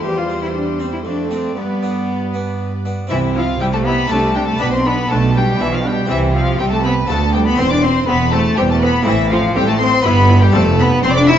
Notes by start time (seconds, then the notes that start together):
Already playing: C5
0.03 E2 G3 G4 C5
0.18 F4
0.30 C4
0.42 E4
0.54 D4
0.79 C4
0.93 E4
1.04 F2 A3 D4 D5
1.31 A3 C4 D4
1.56 G2 B3 B4
1.83 B3 D4
2.34 B3 D4
2.85 B3 D4
3.07 C2 C3 E3 C4 E4 E5
3.11 C3
3.35 F3 E4 F4 F5
3.59 C2 C3 G3 E4 G4 G5
3.73 A3 A4 A5
3.85 B3 E4 B4 B5
4.06 A3 D4 F4 A5
4.10 C2 C3 A3 D4 A4
4.35 G3 D4 G4 G5
4.47 A3 A4 A5
4.57 B1 B2 B3 D4 G4 B4 B5
4.72 C4 C5 C6
4.84 B3 D4 B4 B5
5.09 B1 B2 A3 D4 A4 A5
5.34 G3 D4 G4 G5
5.59 B1 B2 E3 D4 E4 E5
5.72 F3 F4 F5
5.84 G3 D4 G4 G5
6.06 C2 C3 E3 C4 E4 G4 E5
6.33 F3 C4 F4 F5
6.58 C2 C3 G3 C4 G4 G5
6.72 A3 A4 A5
6.83 B3 C4 B4 B5
7.07 D2 A3 B3 F4 A4 A5
7.33 G3 B3 G4 G5
7.46 B3 B4 B5
7.55 E1 E2 C4 E4 C5
7.59 C4 C6
7.71 D4 D5 D6
7.83 C4 C5 C6
8.07 E1 E2 B3 C4 B4 B5
8.32 A3 C4 A4 A5
8.57 E1 E2 G3 C4 G4 G5
8.70 A3 A4 A5
8.82 B3 C4 B4 B5
9.02 A3 C4 E4
9.06 A1 A2 E3 C4 E4 E5
9.30 F3 C4 F4 F5
9.55 A1 A2 G3 C4 G4 G5
9.68 A3 A4 A5
9.80 C4 C5 C6
10.01 G1 G2 B3 E4 B4 B5
10.05 G2 B3
10.29 E4
10.41 G3 G4 G5
10.50 C4 D4 A4 A5
10.54 F1 F2 A3
10.79 B3 C4 B4 B5
11.03 F1 F2 C4 C5 C6
11.16 D4 D5 D6
11.27 C4 E4 E5 E6